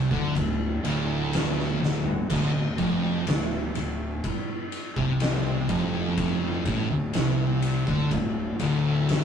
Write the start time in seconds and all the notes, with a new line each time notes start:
0.11 D2 D3, kick
0.35 D1 D2, kick, ride
0.83 D1 D2, ride
1.33 snare, ride
1.59 snare
1.80 D1 D2, snare
2.06 floor tom
2.30 D1 D2, kick, crash
2.53 D1 D2
2.78 F1 F2, kick, ride
3.26 D1 D2, snare, ride
3.75 D1 D2, ride
4.24 kick, ride
4.72 ride
4.96 C2 C3, kick
5.20 snare, ride
5.69 F1 F2, kick, ride
6.17 kick, ride
6.65 A1 A2, kick, ride
6.90 D1 D2
7.13 C2 C3, snare, ride
7.62 ride
7.87 D2 D3, kick
8.11 D1 D2, kick, ride
8.59 D1 D2, ride
9.09 snare, ride